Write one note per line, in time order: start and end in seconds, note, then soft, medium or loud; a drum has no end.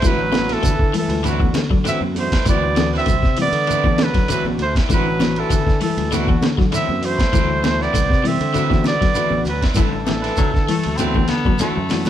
0.02 0.55 A1 loud
0.02 0.25 D3 medium
0.02 0.71 E3 medium
0.02 0.20 F#3 medium
0.02 0.71 A3 medium
0.02 0.20 C4 medium
0.02 0.71 D4 medium
0.02 0.20 E4 medium
0.02 0.71 F#4 medium
0.02 kick medium
0.02 ride bell medium
0.02 low conga medium
0.02 shekere medium
0.06 0.55 F#3 loud
0.06 0.20 B4 loud
0.06 0.54 B4 loud
0.21 muted clean electric guitar stroke soft
0.32 0.56 E3 medium
0.32 muted clean electric guitar stroke soft
0.32 snare medium
0.32 ride bell medium
0.32 high conga loud
0.32 shekere soft
0.48 0.62 C4 soft
0.48 0.62 B4 medium
0.48 muted clean electric guitar stroke medium
0.48 snare soft
0.48 ride bell medium
0.48 high conga medium
0.53 0.96 E3 loud
0.53 0.96 A4 loud
0.62 0.86 D3 medium
0.62 0.77 D3 loud
0.62 muted clean electric guitar stroke soft
0.62 kick medium
0.62 ride bell medium
0.62 shekere loud
0.79 0.92 D3 loud
0.79 kick medium
0.93 1.17 E3 medium
0.93 open hi-hat medium
0.93 low conga medium
0.93 shekere soft
0.98 1.25 E3 medium
0.98 1.24 A4 medium
1.08 1.47 D2 medium
1.08 muted clean electric guitar stroke medium
1.08 ride bell medium
1.08 low conga medium
1.23 1.36 D3 medium
1.23 1.50 E3 medium
1.23 1.40 F#3 medium
1.23 1.50 A3 medium
1.23 1.39 C4 medium
1.23 1.50 D4 medium
1.23 1.39 E4 medium
1.23 1.50 A4 medium
1.23 1.39 B4 medium
1.23 ride bell medium
1.23 shekere medium
1.27 1.58 D3 medium
1.27 1.58 F#4 medium
1.40 1.63 E3 medium
1.40 muted clean electric guitar stroke soft
1.40 kick medium
1.40 high conga medium
1.54 1.94 D3 medium
1.54 muted clean electric guitar stroke soft
1.54 snare medium
1.54 ride bell medium
1.54 high conga loud
1.54 shekere soft
1.70 1.79 E3 medium
1.70 1.82 F#3 medium
1.70 1.79 A3 medium
1.70 1.79 D4 medium
1.70 1.79 F#4 medium
1.70 kick medium
1.84 2.08 D3 medium
1.84 2.03 E3 medium
1.84 2.01 F#3 medium
1.84 2.03 A3 medium
1.84 2.01 C4 medium
1.84 2.02 D4 medium
1.84 2.01 E4 medium
1.84 2.03 F#4 medium
1.84 2.00 B4 medium
1.84 snare soft
1.84 ride bell medium
1.84 shekere medium
1.88 2.01 C4 medium
1.88 2.01 E5 loud
2.01 2.27 F#2 medium
2.01 muted clean electric guitar stroke soft
2.01 high conga medium
2.15 2.34 E3 medium
2.15 2.34 A3 medium
2.15 2.34 D4 medium
2.15 2.34 F#4 medium
2.15 muted clean electric guitar stroke soft
2.15 open hi-hat medium
2.15 high conga medium
2.15 shekere soft
2.19 2.46 A3 medium
2.19 2.46 C5 medium
2.32 2.47 C4 soft
2.32 2.47 E4 soft
2.32 2.47 B4 medium
2.32 kick medium
2.32 snare medium
2.32 ride bell medium
2.45 2.98 D2 loud
2.45 2.69 D3 medium
2.45 3.14 E3 medium
2.45 2.63 F#3 medium
2.45 3.14 A3 medium
2.45 2.63 C4 medium
2.45 3.15 D4 medium
2.45 2.62 E4 medium
2.45 3.15 F#4 medium
2.45 2.62 B4 medium
2.45 kick medium
2.45 ride bell medium
2.45 low conga loud
2.45 shekere medium
2.49 2.92 B3 medium
2.49 2.91 D5 loud
2.63 muted clean electric guitar stroke soft
2.76 2.99 E3 medium
2.76 muted clean electric guitar stroke soft
2.76 snare medium
2.76 ride bell medium
2.76 high conga loud
2.76 shekere soft
2.93 3.08 C4 soft
2.93 3.36 C4 medium
2.93 3.08 E4 medium
2.93 3.07 B4 medium
2.93 snare soft
2.97 3.37 E5 loud
3.06 3.21 C2 loud
3.06 3.29 D3 medium
3.06 muted clean electric guitar stroke soft
3.06 kick medium
3.06 ride bell medium
3.06 shekere medium
3.23 3.49 C3 medium
3.23 kick medium
3.23 snare soft
3.37 3.61 E3 medium
3.37 4.03 B3 medium
3.37 open hi-hat medium
3.37 low conga medium
3.37 shekere soft
3.42 4.05 D5 loud
3.52 4.31 D3 medium
3.52 muted clean electric guitar stroke soft
3.52 ride bell medium
3.66 3.80 D3 medium
3.66 3.76 E3 medium
3.66 3.85 F#3 medium
3.66 3.76 A3 medium
3.66 3.85 C4 medium
3.66 3.77 D4 medium
3.66 3.85 E4 medium
3.66 3.77 A4 medium
3.66 3.84 B4 medium
3.66 ride bell medium
3.66 shekere medium
3.84 4.07 E3 medium
3.84 4.09 E3 medium
3.84 4.09 A3 medium
3.84 4.09 D4 medium
3.84 4.10 A4 medium
3.84 muted clean electric guitar stroke medium
3.84 kick medium
3.84 high conga medium
3.98 4.31 F#3 medium
3.98 muted clean electric guitar stroke soft
3.98 snare medium
3.98 ride bell medium
3.98 high conga loud
3.98 shekere soft
4.04 4.32 B4 loud
4.14 4.26 F#3 medium
4.14 kick medium
4.14 snare soft
4.14 ride bell medium
4.28 4.52 D3 medium
4.28 4.64 E3 medium
4.28 4.46 F#3 medium
4.28 4.63 A3 medium
4.28 4.46 C4 medium
4.28 4.63 D4 medium
4.28 4.45 E4 medium
4.28 4.64 F#4 medium
4.28 4.45 B4 medium
4.28 4.45 B4 loud
4.28 ride bell medium
4.28 shekere loud
4.33 4.46 F#3 medium
4.45 4.57 A1 medium
4.45 muted clean electric guitar stroke soft
4.45 high conga medium
4.59 4.73 D2 loud
4.59 4.75 C5 medium
4.59 muted clean electric guitar stroke soft
4.59 ride bell medium
4.59 shekere soft
4.64 4.77 A3 medium
4.75 4.90 C4 soft
4.75 4.90 E4 medium
4.75 4.90 B4 medium
4.75 kick medium
4.75 snare medium
4.75 ride bell medium
4.89 5.42 A1 loud
4.89 5.12 D3 medium
4.89 5.59 E3 medium
4.89 5.07 F#3 medium
4.89 5.59 A3 medium
4.89 5.07 C4 medium
4.89 5.59 D4 medium
4.89 5.06 E4 medium
4.89 5.59 F#4 medium
4.89 5.06 B4 medium
4.89 kick medium
4.89 ride bell medium
4.89 low conga medium
4.89 shekere loud
4.93 5.42 F#3 medium
4.93 5.41 B4 loud
5.07 muted clean electric guitar stroke soft
5.20 5.43 E3 medium
5.20 muted clean electric guitar stroke soft
5.20 snare medium
5.20 ride bell soft
5.20 high conga loud
5.20 shekere soft
5.36 5.83 E3 medium
5.36 5.52 C4 soft
5.36 5.51 E4 medium
5.36 5.82 A4 medium
5.36 5.51 B4 medium
5.36 ride bell soft
5.50 5.64 D3 loud
5.50 5.74 D3 medium
5.50 muted clean electric guitar stroke soft
5.50 kick medium
5.50 ride bell medium
5.50 shekere medium
5.66 5.79 D3 loud
5.66 kick medium
5.66 snare soft
5.81 6.04 E3 medium
5.81 6.16 E3 medium
5.81 6.16 A4 medium
5.81 open hi-hat medium
5.81 low conga medium
5.81 shekere soft
5.97 6.36 D2 medium
5.97 muted clean electric guitar stroke soft
5.97 ride bell medium
5.97 low conga medium
6.09 6.24 D3 medium
6.09 6.37 E3 medium
6.09 6.28 F#3 medium
6.09 6.37 A3 medium
6.09 6.28 C4 medium
6.09 6.37 D4 medium
6.09 6.37 E4 medium
6.09 6.27 E4 medium
6.09 6.27 B4 medium
6.09 snare soft
6.09 ride bell soft
6.09 high conga medium
6.09 shekere medium
6.14 6.48 D3 medium
6.14 6.47 F#4 medium
6.27 6.51 E3 medium
6.27 muted clean electric guitar stroke medium
6.27 kick medium
6.27 high conga medium
6.41 6.82 D3 medium
6.41 muted clean electric guitar stroke soft
6.41 snare medium
6.41 ride bell medium
6.41 high conga loud
6.41 shekere soft
6.56 6.65 E3 medium
6.56 6.69 F#3 medium
6.56 6.65 A3 medium
6.56 6.66 D4 medium
6.56 6.66 F#4 medium
6.56 kick medium
6.56 snare soft
6.71 6.96 D3 medium
6.71 6.90 E3 medium
6.71 6.89 F#3 medium
6.71 6.90 A3 medium
6.71 6.88 C4 medium
6.71 6.90 D4 medium
6.71 6.90 E4 medium
6.71 6.87 E4 medium
6.71 muted clean electric guitar stroke medium
6.71 ride bell medium
6.71 shekere loud
6.75 7.07 C4 medium
6.75 7.07 E5 loud
6.88 7.15 F#2 medium
6.88 muted clean electric guitar stroke soft
6.88 high conga medium
7.01 7.20 E3 medium
7.01 7.20 A3 medium
7.01 7.20 D4 medium
7.01 7.21 F#4 medium
7.01 7.84 C5 loud
7.01 muted clean electric guitar stroke soft
7.01 open hi-hat medium
7.01 shekere soft
7.05 7.83 A3 medium
7.18 7.32 C4 soft
7.18 7.32 E4 medium
7.18 7.32 B4 medium
7.18 kick medium
7.18 snare medium
7.18 ride bell medium
7.32 7.86 D2 loud
7.32 7.56 D3 medium
7.32 8.01 E3 medium
7.32 7.49 F#3 medium
7.32 8.02 A3 medium
7.32 7.48 C4 medium
7.32 8.02 D4 medium
7.32 8.02 E4 medium
7.32 7.48 E4 medium
7.32 7.48 B4 medium
7.32 kick medium
7.32 ride bell medium
7.32 low conga medium
7.32 shekere medium
7.49 muted clean electric guitar stroke soft
7.64 7.87 E3 medium
7.64 muted clean electric guitar stroke soft
7.64 snare medium
7.64 ride bell medium
7.64 high conga loud
7.64 shekere soft
7.80 8.28 B3 loud
7.80 7.95 C4 soft
7.80 7.93 E4 medium
7.80 8.29 D5 loud
7.80 muted clean electric guitar stroke medium
7.80 snare soft
7.94 8.08 C2 loud
7.94 8.17 D3 medium
7.94 muted clean electric guitar stroke soft
7.94 kick medium
7.94 ride bell medium
7.94 shekere medium
8.10 8.37 C3 medium
8.10 kick medium
8.10 snare soft
8.24 8.47 E3 medium
8.24 8.87 C4 medium
8.24 8.87 E5 loud
8.24 open hi-hat medium
8.24 low conga medium
8.24 shekere soft
8.41 9.19 D3 loud
8.41 muted clean electric guitar stroke soft
8.41 ride bell medium
8.54 8.67 D3 medium
8.54 8.64 E3 medium
8.54 8.71 F#3 medium
8.54 8.64 A3 medium
8.54 8.70 C4 medium
8.54 8.64 D4 medium
8.54 8.70 E4 medium
8.54 8.64 F#4 medium
8.54 8.70 B4 medium
8.54 ride bell medium
8.54 shekere medium
8.68 8.95 E3 medium
8.68 8.94 E3 medium
8.68 8.95 A3 medium
8.68 8.95 D4 medium
8.68 8.95 F#4 medium
8.68 muted clean electric guitar stroke soft
8.68 kick medium
8.68 snare soft
8.68 high conga medium
8.84 9.44 D5 loud
8.84 muted clean electric guitar stroke soft
8.84 snare medium
8.84 ride bell medium
8.84 high conga loud
8.84 shekere soft
8.88 9.44 B3 medium
9.01 9.12 F#3 medium
9.01 kick medium
9.01 snare soft
9.01 ride bell medium
9.14 9.39 D3 medium
9.14 9.49 E3 medium
9.14 9.31 F#3 medium
9.14 9.50 A3 medium
9.14 9.31 C4 medium
9.14 9.50 D4 medium
9.14 9.30 E4 medium
9.14 9.50 F#4 medium
9.14 9.30 B4 medium
9.14 ride bell medium
9.14 shekere medium
9.30 9.44 A1 medium
9.30 muted clean electric guitar stroke soft
9.30 high conga medium
9.45 9.60 D2 loud
9.45 9.61 F#3 medium
9.45 muted clean electric guitar stroke soft
9.45 ride bell medium
9.45 shekere soft
9.49 9.63 B4 medium
9.61 9.75 C4 medium
9.61 9.75 E4 medium
9.61 9.76 B4 medium
9.61 kick medium
9.61 snare medium
9.61 ride bell medium
9.75 10.29 A1 loud
9.75 10.00 D3 loud
9.75 10.45 E3 medium
9.75 9.93 F#3 medium
9.75 10.45 A3 medium
9.75 9.91 C4 medium
9.75 10.45 D4 medium
9.75 9.91 E4 medium
9.75 10.45 A4 medium
9.75 9.90 B4 medium
9.75 kick medium
9.75 ride bell medium
9.75 low conga medium
9.75 shekere medium
9.79 11.57 E3 medium
9.79 11.57 A4 medium
9.92 muted clean electric guitar stroke soft
10.05 10.31 E3 medium
10.05 muted clean electric guitar stroke soft
10.05 snare medium
10.05 ride bell medium
10.05 high conga loud
10.05 shekere soft
10.22 10.37 C4 soft
10.22 10.37 E4 medium
10.22 10.37 B4 medium
10.22 snare soft
10.22 ride bell medium
10.37 10.52 D3 loud
10.37 10.62 D3 medium
10.37 10.51 F#3 medium
10.37 muted clean electric guitar stroke soft
10.37 kick medium
10.37 ride bell medium
10.37 shekere medium
10.54 10.67 D3 loud
10.54 kick medium
10.54 snare soft
10.68 10.92 E3 medium
10.68 10.98 A3 medium
10.68 snare soft
10.68 open hi-hat medium
10.68 low conga medium
10.68 shekere soft
10.83 11.24 D2 medium
10.83 muted clean electric guitar stroke medium
10.83 ride bell medium
10.97 11.12 D3 medium
10.97 11.25 E3 loud
10.97 11.15 F#3 medium
10.97 11.25 A3 medium
10.97 11.31 C4 loud
10.97 11.15 C4 medium
10.97 11.25 D4 medium
10.97 11.15 E4 loud
10.97 11.25 F#4 loud
10.97 11.15 B4 loud
10.97 ride bell medium
10.97 high conga medium
10.97 shekere loud
11.14 11.39 E3 medium
11.14 muted clean electric guitar stroke medium
11.14 kick medium
11.14 high conga medium
11.28 11.70 D3 medium
11.28 11.62 B3 loud
11.28 muted clean electric guitar stroke soft
11.28 snare medium
11.28 ride bell medium
11.28 high conga medium
11.28 shekere soft
11.44 11.53 E3 medium
11.44 11.57 F#3 medium
11.44 11.53 A3 medium
11.44 11.53 D4 medium
11.44 11.54 A4 loud
11.44 kick medium
11.44 high conga loud
11.59 11.83 D3 medium
11.59 11.78 E3 medium
11.59 11.77 F#3 medium
11.59 11.78 A3 medium
11.59 12.10 A3 medium
11.59 11.77 C4 medium
11.59 11.78 D4 medium
11.59 11.76 E4 medium
11.59 11.78 F#4 loud
11.59 11.76 B4 medium
11.59 snare medium
11.59 ride bell medium
11.59 low conga medium
11.59 shekere loud
11.77 12.03 F#2 medium
11.77 muted clean electric guitar stroke soft
11.89 12.08 E3 medium
11.89 12.08 A3 medium
11.89 12.08 D4 medium
11.89 12.08 F#4 loud
11.89 muted clean electric guitar stroke soft
11.89 snare medium
11.89 open hi-hat medium
11.89 low conga medium
11.89 shekere soft
12.05 ride bell medium
12.05 low conga loud